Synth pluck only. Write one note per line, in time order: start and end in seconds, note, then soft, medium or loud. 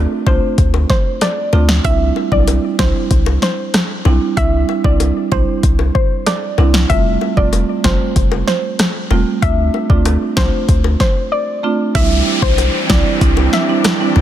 0.27 0.36 C5 medium
0.90 0.99 C5 medium
1.22 1.66 D5 medium
1.85 1.94 E5 loud
2.32 2.42 D5 medium
2.79 2.89 C5 medium
3.43 3.52 C5 medium
4.37 4.47 E5 loud
4.85 4.94 D5 medium
5.32 5.41 C5 medium
5.95 6.04 C5 medium
6.26 6.71 D5 medium
6.90 6.99 E5 loud
7.37 7.47 D5 medium
7.84 7.94 C5 medium
8.47 8.57 C5 medium
9.42 9.52 E5 loud
9.90 9.99 D5 medium
10.37 10.47 C5 medium
11.00 11.10 C5 medium
11.32 11.76 D5 medium
11.95 12.05 E5 loud
12.42 12.61 C5 medium
12.90 13.09 D5 medium
13.53 13.63 E5 medium